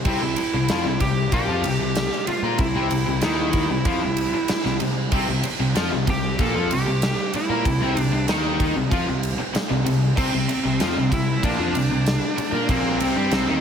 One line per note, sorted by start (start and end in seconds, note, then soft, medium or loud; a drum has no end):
0.05 0.20 C2 medium
0.05 0.21 C3 loud
0.05 0.21 C4 loud
0.05 1.01 E4 loud
0.05 kick loud
0.05 crash loud
0.22 0.37 C2 medium
0.22 0.37 C3 medium
0.36 muted distorted electric guitar stroke medium
0.36 muted picked electric bass stroke soft
0.36 ride medium
0.54 0.68 C2 medium
0.54 0.69 C3 medium
0.68 0.84 F2 loud
0.68 0.84 F3 medium
0.68 0.85 F4 loud
0.68 snare loud
0.68 ride loud
0.84 0.99 C2 medium
0.84 0.99 C3 medium
1.00 1.30 C2 medium
1.00 1.26 C3 medium
1.00 1.30 G4 loud
1.00 kick medium
1.00 ride medium
1.32 1.47 A#1 loud
1.32 1.47 A#2 loud
1.32 1.48 A#3 loud
1.32 2.27 G4 loud
1.32 kick loud
1.32 ride loud
1.48 1.62 F2 loud
1.48 1.63 F3 loud
1.48 1.64 F4 loud
1.63 1.78 C2 medium
1.63 1.80 C3 medium
1.63 ride medium
1.79 2.09 C2 medium
1.79 2.06 C3 medium
1.95 snare loud
1.95 ride loud
2.12 snare soft
2.27 2.59 F4 loud
2.27 muted picked electric bass stroke soft
2.27 muted distorted electric guitar stroke medium
2.27 ride medium
2.42 2.58 A#2 medium
2.42 2.58 A#3 medium
2.42 2.59 A#4 loud
2.58 2.74 C2 medium
2.58 2.75 C3 medium
2.58 3.21 E4 loud
2.58 kick loud
2.58 ride loud
2.75 2.90 C2 medium
2.75 2.90 C3 loud
2.75 2.91 C4 loud
2.90 3.05 C2 medium
2.90 3.07 C3 medium
2.90 ride medium
3.07 3.22 C2 medium
3.07 3.23 C3 medium
3.21 3.67 D#2 loud
3.21 3.69 D#3 medium
3.21 3.70 D#4 medium
3.21 4.77 E4 medium
3.21 snare loud
3.21 ride loud
3.53 kick medium
3.53 ride medium
3.70 3.85 C2 medium
3.70 3.85 C3 medium
3.85 4.00 F2 loud
3.85 4.01 F3 loud
3.85 4.01 F4 loud
3.85 kick loud
3.85 ride loud
4.02 4.32 C2 medium
4.02 4.27 C3 medium
4.17 ride medium
4.34 muted distorted electric guitar stroke medium
4.34 muted picked electric bass stroke soft
4.48 muted distorted electric guitar stroke medium
4.48 muted picked electric bass stroke soft
4.48 snare loud
4.48 ride loud
4.65 4.80 C2 medium
4.65 4.81 C3 medium
4.65 snare soft
4.80 5.10 C2 medium
4.80 5.07 C3 medium
4.80 ride medium
5.12 5.27 C2 loud
5.12 5.26 C3 medium
5.12 5.27 C4 medium
5.12 kick loud
5.12 crash loud
5.27 5.43 C2 medium
5.27 5.43 C3 medium
5.43 muted distorted electric guitar stroke medium
5.43 muted picked electric bass stroke soft
5.43 ride medium
5.60 5.75 C2 medium
5.60 5.75 C3 medium
5.75 5.91 F2 loud
5.75 5.90 F3 medium
5.75 5.91 F4 loud
5.75 snare loud
5.75 ride loud
5.92 6.07 C2 medium
5.92 6.07 C3 medium
6.07 6.37 C2 medium
6.07 6.33 C3 medium
6.07 6.41 G4 loud
6.07 kick medium
6.07 ride medium
6.39 6.53 A#1 loud
6.39 6.54 A#2 loud
6.39 6.54 A#3 loud
6.39 6.72 A4 loud
6.39 kick loud
6.39 ride medium
6.56 6.70 F2 loud
6.56 6.70 F3 loud
6.56 6.70 F4 loud
6.71 6.86 C2 medium
6.71 6.86 C3 medium
6.71 7.31 G4 medium
6.71 ride medium
6.87 7.16 C2 medium
6.87 7.12 C3 medium
7.02 snare loud
7.02 ride loud
7.33 7.99 E4 medium
7.33 muted picked electric bass stroke soft
7.33 muted distorted electric guitar stroke medium
7.33 ride medium
7.49 7.64 A#2 loud
7.49 7.64 A#3 loud
7.49 7.65 A#4 loud
7.65 7.80 C2 medium
7.65 7.80 C3 medium
7.65 kick loud
7.65 ride loud
7.80 7.95 C2 loud
7.80 7.96 C3 loud
7.80 7.96 C4 loud
7.97 8.12 C2 medium
7.97 8.12 C3 medium
7.97 8.26 D4 medium
7.97 ride medium
8.12 8.27 C2 medium
8.12 8.28 C3 medium
8.28 8.72 D#2 medium
8.28 8.75 D#3 medium
8.28 8.75 D#4 loud
8.28 snare loud
8.28 ride medium
8.60 kick medium
8.60 ride medium
8.76 8.90 C2 medium
8.76 8.91 C3 medium
8.91 9.06 F2 loud
8.91 9.07 F3 loud
8.91 9.07 F4 loud
8.91 kick loud
8.91 ride loud
9.07 9.37 C2 medium
9.07 9.32 C3 medium
9.23 ride medium
9.39 muted distorted electric guitar stroke medium
9.39 muted picked electric bass stroke soft
9.54 muted distorted electric guitar stroke medium
9.54 muted picked electric bass stroke soft
9.54 snare loud
9.54 ride loud
9.70 9.85 C2 medium
9.70 9.84 C3 medium
9.85 10.16 C2 medium
9.85 10.11 C3 medium
9.85 ride medium
10.17 10.32 C2 medium
10.17 10.32 C3 medium
10.17 11.08 C4 loud
10.17 10.33 C4 medium
10.17 kick loud
10.17 crash loud
10.33 10.48 C2 medium
10.33 10.48 C3 medium
10.49 muted distorted electric guitar stroke medium
10.49 muted picked electric bass stroke soft
10.49 ride medium
10.65 10.80 C2 medium
10.65 10.80 C3 medium
10.80 10.96 F2 medium
10.80 10.95 F3 medium
10.80 10.96 F4 loud
10.80 snare loud
10.80 ride loud
10.97 11.11 C2 medium
10.97 11.11 C3 medium
11.11 11.41 C2 medium
11.11 11.37 C3 medium
11.11 11.42 E4 loud
11.11 kick medium
11.11 ride medium
11.43 11.58 A#1 loud
11.43 11.58 A#2 loud
11.43 11.58 A#3 loud
11.43 12.70 D4 loud
11.43 kick loud
11.43 ride loud
11.59 11.74 F2 loud
11.59 11.74 F3 loud
11.59 11.75 F4 loud
11.75 11.90 C2 medium
11.75 11.90 C3 medium
11.75 ride medium
11.91 12.20 C2 medium
11.91 12.16 C3 medium
12.06 snare loud
12.06 ride loud
12.38 muted picked electric bass stroke soft
12.38 muted distorted electric guitar stroke medium
12.38 ride medium
12.52 12.67 A#2 loud
12.52 12.69 A#3 loud
12.52 12.69 A#4 loud
12.69 12.98 A#1 medium
12.69 13.00 A#2 medium
12.69 13.01 A#3 loud
12.69 13.61 C4 medium
12.69 kick loud
12.69 ride loud
13.00 13.14 C2 loud
13.00 13.16 C3 loud
13.00 13.17 C4 loud
13.00 ride medium
13.15 13.30 G2 loud
13.15 13.32 G3 loud
13.15 13.32 G4 loud
13.31 13.45 C2 loud
13.31 13.47 C3 medium
13.31 13.48 C4 medium
13.31 snare loud
13.31 ride medium
13.46 13.61 D#2 medium
13.46 13.61 D#3 medium
13.46 13.61 D#4 loud